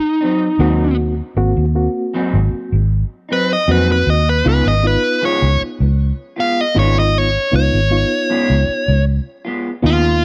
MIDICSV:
0, 0, Header, 1, 6, 480
1, 0, Start_track
1, 0, Tempo, 770218
1, 856, Time_signature, 4, 2, 24, 8
1, 6387, End_track
2, 0, Start_track
2, 0, Title_t, "Overdriven electric guitar"
2, 0, Program_c, 0, 29
2, 0, Note_on_c, 0, 63, 79
2, 599, Note_off_c, 0, 63, 0
2, 2073, Note_on_c, 0, 71, 81
2, 2184, Note_off_c, 0, 71, 0
2, 2200, Note_on_c, 0, 75, 65
2, 2302, Note_off_c, 0, 75, 0
2, 2314, Note_on_c, 0, 71, 83
2, 2425, Note_off_c, 0, 71, 0
2, 2442, Note_on_c, 0, 71, 70
2, 2543, Note_off_c, 0, 71, 0
2, 2555, Note_on_c, 0, 75, 68
2, 2665, Note_off_c, 0, 75, 0
2, 2676, Note_on_c, 0, 71, 81
2, 2780, Note_off_c, 0, 71, 0
2, 2798, Note_on_c, 0, 71, 89
2, 2907, Note_off_c, 0, 71, 0
2, 2916, Note_on_c, 0, 75, 67
2, 3020, Note_off_c, 0, 75, 0
2, 3036, Note_on_c, 0, 71, 75
2, 3258, Note_off_c, 0, 71, 0
2, 3273, Note_on_c, 0, 73, 86
2, 3496, Note_off_c, 0, 73, 0
2, 3989, Note_on_c, 0, 77, 70
2, 4118, Note_off_c, 0, 77, 0
2, 4118, Note_on_c, 0, 75, 75
2, 4220, Note_off_c, 0, 75, 0
2, 4232, Note_on_c, 0, 73, 78
2, 4343, Note_off_c, 0, 73, 0
2, 4359, Note_on_c, 0, 75, 67
2, 4474, Note_off_c, 0, 75, 0
2, 4474, Note_on_c, 0, 73, 78
2, 4697, Note_off_c, 0, 73, 0
2, 4708, Note_on_c, 0, 73, 90
2, 5635, Note_off_c, 0, 73, 0
2, 6145, Note_on_c, 0, 65, 88
2, 6372, Note_off_c, 0, 65, 0
2, 6387, End_track
3, 0, Start_track
3, 0, Title_t, "Reed electric piano"
3, 0, Program_c, 1, 4
3, 372, Note_on_c, 1, 58, 79
3, 376, Note_on_c, 1, 60, 72
3, 378, Note_on_c, 1, 66, 88
3, 704, Note_off_c, 1, 58, 0
3, 706, Note_off_c, 1, 60, 0
3, 707, Note_off_c, 1, 66, 0
3, 852, Note_on_c, 1, 58, 75
3, 856, Note_on_c, 1, 60, 73
3, 858, Note_on_c, 1, 66, 92
3, 1020, Note_off_c, 1, 58, 0
3, 1022, Note_off_c, 1, 60, 0
3, 1023, Note_off_c, 1, 66, 0
3, 1092, Note_on_c, 1, 58, 68
3, 1095, Note_on_c, 1, 60, 57
3, 1097, Note_on_c, 1, 66, 76
3, 1750, Note_off_c, 1, 58, 0
3, 1751, Note_off_c, 1, 60, 0
3, 1753, Note_off_c, 1, 66, 0
3, 2293, Note_on_c, 1, 58, 67
3, 2297, Note_on_c, 1, 60, 65
3, 2301, Note_on_c, 1, 66, 71
3, 2624, Note_off_c, 1, 58, 0
3, 2626, Note_off_c, 1, 60, 0
3, 2628, Note_off_c, 1, 66, 0
3, 2772, Note_on_c, 1, 59, 64
3, 2775, Note_on_c, 1, 63, 59
3, 2778, Note_on_c, 1, 65, 77
3, 2939, Note_off_c, 1, 59, 0
3, 2941, Note_off_c, 1, 63, 0
3, 2942, Note_off_c, 1, 65, 0
3, 3011, Note_on_c, 1, 59, 55
3, 3015, Note_on_c, 1, 63, 52
3, 3017, Note_on_c, 1, 65, 59
3, 3669, Note_off_c, 1, 59, 0
3, 3671, Note_off_c, 1, 63, 0
3, 3672, Note_off_c, 1, 65, 0
3, 4205, Note_on_c, 1, 59, 66
3, 4209, Note_on_c, 1, 63, 61
3, 4214, Note_on_c, 1, 65, 80
3, 4539, Note_off_c, 1, 59, 0
3, 4541, Note_off_c, 1, 63, 0
3, 4544, Note_off_c, 1, 65, 0
3, 4685, Note_on_c, 1, 59, 71
3, 4688, Note_on_c, 1, 63, 59
3, 4695, Note_on_c, 1, 65, 70
3, 4855, Note_off_c, 1, 59, 0
3, 4857, Note_off_c, 1, 63, 0
3, 4860, Note_off_c, 1, 65, 0
3, 4926, Note_on_c, 1, 59, 56
3, 4930, Note_on_c, 1, 63, 50
3, 4933, Note_on_c, 1, 65, 64
3, 5586, Note_off_c, 1, 59, 0
3, 5588, Note_off_c, 1, 63, 0
3, 5589, Note_off_c, 1, 65, 0
3, 6123, Note_on_c, 1, 59, 72
3, 6126, Note_on_c, 1, 63, 64
3, 6129, Note_on_c, 1, 65, 74
3, 6387, Note_off_c, 1, 59, 0
3, 6387, Note_off_c, 1, 63, 0
3, 6387, Note_off_c, 1, 65, 0
3, 6387, End_track
4, 0, Start_track
4, 0, Title_t, "Clean electric guitar"
4, 0, Program_c, 2, 27
4, 130, Note_on_c, 2, 63, 54
4, 138, Note_on_c, 2, 60, 50
4, 147, Note_on_c, 2, 54, 47
4, 280, Note_off_c, 2, 63, 0
4, 284, Note_off_c, 2, 60, 0
4, 289, Note_off_c, 2, 54, 0
4, 369, Note_on_c, 2, 44, 75
4, 374, Note_on_c, 2, 54, 88
4, 379, Note_on_c, 2, 60, 83
4, 381, Note_on_c, 2, 63, 89
4, 520, Note_off_c, 2, 44, 0
4, 522, Note_off_c, 2, 54, 0
4, 525, Note_off_c, 2, 60, 0
4, 526, Note_off_c, 2, 63, 0
4, 1331, Note_on_c, 2, 44, 81
4, 1336, Note_on_c, 2, 54, 78
4, 1340, Note_on_c, 2, 60, 85
4, 1343, Note_on_c, 2, 63, 84
4, 1481, Note_off_c, 2, 44, 0
4, 1483, Note_off_c, 2, 54, 0
4, 1485, Note_off_c, 2, 60, 0
4, 1486, Note_off_c, 2, 63, 0
4, 2048, Note_on_c, 2, 63, 46
4, 2060, Note_on_c, 2, 60, 46
4, 2067, Note_on_c, 2, 54, 44
4, 2199, Note_off_c, 2, 63, 0
4, 2205, Note_off_c, 2, 60, 0
4, 2208, Note_off_c, 2, 54, 0
4, 2290, Note_on_c, 2, 44, 68
4, 2293, Note_on_c, 2, 54, 66
4, 2299, Note_on_c, 2, 60, 74
4, 2301, Note_on_c, 2, 63, 76
4, 2440, Note_off_c, 2, 44, 0
4, 2441, Note_off_c, 2, 54, 0
4, 2444, Note_off_c, 2, 60, 0
4, 2445, Note_off_c, 2, 63, 0
4, 2770, Note_on_c, 2, 49, 70
4, 2776, Note_on_c, 2, 56, 68
4, 2780, Note_on_c, 2, 59, 71
4, 2784, Note_on_c, 2, 65, 73
4, 2919, Note_off_c, 2, 49, 0
4, 2922, Note_off_c, 2, 56, 0
4, 2924, Note_off_c, 2, 59, 0
4, 2926, Note_off_c, 2, 65, 0
4, 3250, Note_on_c, 2, 49, 65
4, 3256, Note_on_c, 2, 56, 67
4, 3259, Note_on_c, 2, 59, 76
4, 3264, Note_on_c, 2, 65, 75
4, 3399, Note_off_c, 2, 49, 0
4, 3402, Note_off_c, 2, 56, 0
4, 3404, Note_off_c, 2, 59, 0
4, 3406, Note_off_c, 2, 65, 0
4, 3966, Note_on_c, 2, 65, 50
4, 3974, Note_on_c, 2, 59, 45
4, 3983, Note_on_c, 2, 56, 40
4, 4117, Note_off_c, 2, 65, 0
4, 4121, Note_off_c, 2, 59, 0
4, 4126, Note_off_c, 2, 56, 0
4, 4206, Note_on_c, 2, 49, 73
4, 4211, Note_on_c, 2, 56, 68
4, 4217, Note_on_c, 2, 59, 76
4, 4220, Note_on_c, 2, 65, 75
4, 4357, Note_off_c, 2, 49, 0
4, 4359, Note_off_c, 2, 56, 0
4, 4362, Note_off_c, 2, 59, 0
4, 4364, Note_off_c, 2, 65, 0
4, 5171, Note_on_c, 2, 49, 65
4, 5175, Note_on_c, 2, 56, 69
4, 5179, Note_on_c, 2, 59, 76
4, 5182, Note_on_c, 2, 65, 72
4, 5319, Note_off_c, 2, 49, 0
4, 5321, Note_off_c, 2, 56, 0
4, 5323, Note_off_c, 2, 59, 0
4, 5324, Note_off_c, 2, 65, 0
4, 5887, Note_on_c, 2, 65, 61
4, 5897, Note_on_c, 2, 59, 54
4, 5904, Note_on_c, 2, 56, 51
4, 6037, Note_off_c, 2, 65, 0
4, 6042, Note_off_c, 2, 59, 0
4, 6046, Note_off_c, 2, 56, 0
4, 6124, Note_on_c, 2, 49, 69
4, 6130, Note_on_c, 2, 56, 70
4, 6134, Note_on_c, 2, 59, 75
4, 6138, Note_on_c, 2, 65, 82
4, 6275, Note_off_c, 2, 49, 0
4, 6279, Note_off_c, 2, 56, 0
4, 6281, Note_off_c, 2, 59, 0
4, 6282, Note_off_c, 2, 65, 0
4, 6387, End_track
5, 0, Start_track
5, 0, Title_t, "Fingered electric bass"
5, 0, Program_c, 3, 33
5, 369, Note_on_c, 3, 39, 90
5, 748, Note_off_c, 3, 39, 0
5, 851, Note_on_c, 3, 32, 87
5, 950, Note_off_c, 3, 32, 0
5, 975, Note_on_c, 3, 39, 83
5, 1165, Note_off_c, 3, 39, 0
5, 1456, Note_on_c, 3, 32, 82
5, 1548, Note_off_c, 3, 32, 0
5, 1698, Note_on_c, 3, 32, 77
5, 1886, Note_off_c, 3, 32, 0
5, 2293, Note_on_c, 3, 41, 72
5, 2510, Note_off_c, 3, 41, 0
5, 2537, Note_on_c, 3, 39, 76
5, 2751, Note_off_c, 3, 39, 0
5, 2778, Note_on_c, 3, 37, 87
5, 2874, Note_off_c, 3, 37, 0
5, 2902, Note_on_c, 3, 32, 78
5, 3089, Note_off_c, 3, 32, 0
5, 3380, Note_on_c, 3, 37, 79
5, 3470, Note_off_c, 3, 37, 0
5, 3617, Note_on_c, 3, 37, 84
5, 3805, Note_off_c, 3, 37, 0
5, 4214, Note_on_c, 3, 32, 92
5, 4590, Note_off_c, 3, 32, 0
5, 4693, Note_on_c, 3, 37, 87
5, 4790, Note_off_c, 3, 37, 0
5, 4818, Note_on_c, 3, 32, 84
5, 5006, Note_off_c, 3, 32, 0
5, 5296, Note_on_c, 3, 37, 78
5, 5387, Note_off_c, 3, 37, 0
5, 5536, Note_on_c, 3, 37, 86
5, 5724, Note_off_c, 3, 37, 0
5, 6132, Note_on_c, 3, 39, 90
5, 6387, Note_off_c, 3, 39, 0
5, 6387, End_track
6, 0, Start_track
6, 0, Title_t, "Muted fingered electric bass strokes"
6, 1576, Note_on_c, 9, 29, 35
6, 1638, Note_off_c, 9, 29, 0
6, 3497, Note_on_c, 9, 29, 35
6, 3559, Note_off_c, 9, 29, 0
6, 5413, Note_on_c, 9, 29, 33
6, 5476, Note_off_c, 9, 29, 0
6, 6387, End_track
0, 0, End_of_file